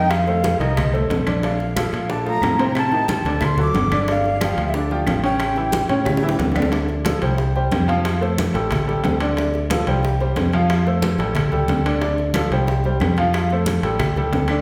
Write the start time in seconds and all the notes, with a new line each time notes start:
Already playing: F2 D#3 D#4 D#5 G5
0.10 F5, high bongo, high conga, high timbale, claves
0.27 A3 A4 C5, high bongo, high conga
0.44 high bongo, high conga, high timbale, low timbale
0.60 C2 D#3 D#4 D#5, high bongo, high conga, high timbale
0.77 high bongo, high conga, low conga, high timbale, claves
0.93 A3 A4 C5, high bongo, high conga
1.09 A#1, high bongo, low bongo, high conga, high timbale, low timbale
1.26 D3 D4 D5, high conga, high timbale, claves
1.43 D3 D4 D5 F5, high bongo, high conga, high timbale
1.60 high bongo, high conga
1.76 F3 F4 A4 F5, high bongo, high conga, high timbale, low timbale, claves
1.93 A#2, high bongo, high timbale
2.09 D3 D4 D5 A5, high bongo, high conga
2.26 F3 A3 F4 A#5, high bongo, high conga
2.42 A2, high bongo, low bongo, high conga, high timbale, low timbale, claves
2.59 C3 C4 C5, high conga, high timbale
2.75 A5, high bongo, high conga, high timbale, claves
2.92 D#3 D#4 G4, high bongo, high conga
3.08 A5, high bongo, high conga, high timbale, low timbale
3.25 D2 D3 D4 D5, high bongo, high conga, high timbale
3.41 high bongo, high conga, low conga, high timbale, claves
3.45 C6
3.58 F#3 F#4 A4, high bongo, high conga, low conga
3.62 D6
3.74 G1, high bongo, low bongo, high conga, high timbale, low timbale
3.92 D3 D4 D5, high conga, high timbale, claves
4.08 D3 D4 D5 F5, high bongo, high conga, high timbale
4.24 high bongo, high conga
4.41 F3 F4 G4 F5, high bongo, high conga, high timbale, low timbale, claves
4.57 D2, high bongo, high timbale
4.68 E5
4.74 D3 D4 D5, high bongo, high conga
4.91 F3 F4 G4, high bongo, high conga
5.07 A1 F5, high bongo, low bongo, high conga, high timbale, low timbale, claves
5.23 C#3 C#4 C#5 G5, high conga, high timbale
5.40 high bongo, high conga, high timbale, claves
5.56 E3 E4 G4, high bongo, high conga
5.72 high bongo, high conga, high timbale, low timbale
5.89 A2 C#3 C#4 C#5, high bongo, high conga, high timbale
6.05 high bongo, high conga, low conga, high timbale, claves
6.17 high bongo
6.22 E3 E4 G4, high conga
6.29 low bongo
6.39 D2, low bongo, high conga, low timbale
6.52 D3, low bongo, low timbale
6.56 D4 D5, high conga, claves
6.62 low bongo
6.72 D3 D4 D5, high bongo, high conga, high timbale
6.89 high bongo, high conga
7.05 F3 F4 A4, high bongo, high conga, high timbale, low timbale
7.21 C2 G3 G4 C5, high bongo, high timbale
7.38 high bongo, high conga
7.55 G3 G4 C5, high bongo, high conga
7.72 F2, high bongo, low bongo, high conga, high timbale, low timbale
7.88 F3 F4 F5, high conga, high timbale
8.05 high bongo, high conga, high timbale
8.21 A3 A4 C5, high bongo, high conga
8.38 high bongo, high conga, high timbale, low timbale
8.54 A1 G3 G4 A4, high bongo, high conga, high timbale
8.71 high bongo, high conga, low conga, high timbale
8.87 G3 G4 A4, high bongo, high conga
9.04 D2, high bongo, low bongo, high conga, high timbale, low timbale
9.20 D3 D4 D5, high timbale
9.37 D3 D4 D5, high bongo, high conga, high timbale
9.54 high bongo, high conga
9.70 F3 F4 A4, high bongo, high conga, high timbale, low timbale
9.87 C2 G3 G4 C5, high bongo, high timbale
10.03 high bongo, high conga
10.20 G3 G4 C5, high bongo, high conga
10.36 F2, high bongo, low bongo, high conga, high timbale, low timbale
10.53 F3 F4 F5, high conga, high timbale
10.70 high bongo, high conga, high timbale
10.86 A3 A4 C5, high bongo, high conga
11.02 high bongo, high conga, high timbale, low timbale
11.18 A1 G3 G4 A4, high bongo, high conga, high timbale
11.35 high bongo, high conga, low conga, high timbale
11.52 C#2 G3 G4 A4, high bongo, high conga
11.68 D2, high bongo, low bongo, high conga, high timbale, low timbale
11.85 D3 D4 D5, high timbale
12.01 D3 D4 D5, high bongo, high conga, high timbale
12.18 high bongo, high conga
12.34 F3 F4 A4, high bongo, high conga, high timbale, low timbale, claves
12.51 C2 G3 G4 C5, high bongo, high timbale
12.67 high bongo, high conga
12.84 G3 G4 C5, high bongo, high conga
13.00 F2, high bongo, low bongo, high conga, high timbale, low timbale, claves
13.17 F3 F4 F5, high conga, high timbale
13.33 high bongo, high conga, high timbale, claves
13.50 A3 A4 C5, high bongo, high conga
13.66 high bongo, high conga, high timbale, low timbale
13.83 A1 G3 G4 A4, high bongo, high conga, high timbale
13.99 high bongo, high conga, low conga, high timbale, claves
14.16 C#2 G3 G4 A4, high bongo, high conga
14.33 D2, high bongo, low bongo, high conga, high timbale, low timbale
14.48 D3 D4 D5, high timbale, claves